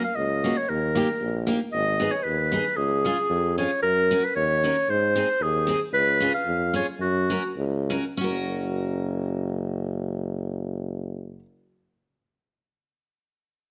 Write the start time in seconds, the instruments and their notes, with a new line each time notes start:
0.04 clarinet F5
0.15 tuba C#2, clarinet D#5
0.44 steel-string acoustic guitar A#3 C#4 F#4
0.57 clarinet C#5
0.69 tuba D#2, clarinet A#4
0.95 steel-string acoustic guitar A#3 D#4 G4
1.21 tuba A#1
1.47 steel-string acoustic guitar A#3 D#4 G4
1.72 tuba G#1, clarinet D#5
2.00 steel-string acoustic guitar B3 D#4 G#4
2.12 clarinet C#5
2.23 tuba D#2, clarinet B4
2.52 steel-string acoustic guitar B3 D#4 G#4
2.76 tuba C#2, clarinet G#4
3.05 steel-string acoustic guitar C#4 F4 G#4
3.30 tuba F2
3.58 steel-string acoustic guitar C#4 F4 G#4, clarinet C#5
3.83 tuba F#2, clarinet A#4
4.11 steel-string acoustic guitar C#4 F#4 A#4
4.24 clarinet B4
4.36 tuba D#2, clarinet C#5
4.64 steel-string acoustic guitar C#4 F#4 A#4
4.88 tuba G#2, clarinet C5
5.16 steel-string acoustic guitar C4 D#4 G#4
5.40 tuba D#2, clarinet G#4
5.67 steel-string acoustic guitar C4 D#4 G#4
5.92 tuba C#2, clarinet B4
6.20 steel-string acoustic guitar C#4 F4 G#4
6.34 clarinet F5
6.45 tuba F2
6.74 steel-string acoustic guitar C#4 F4 G#4, clarinet C#5
6.99 tuba F#2, clarinet F#4
7.30 steel-string acoustic guitar C#4 F#4 A#4
7.57 tuba C#2
7.90 steel-string acoustic guitar C#4 F#4 A#4
8.17 tuba F#1, steel-string acoustic guitar C#4 F#4
8.24 steel-string acoustic guitar A#4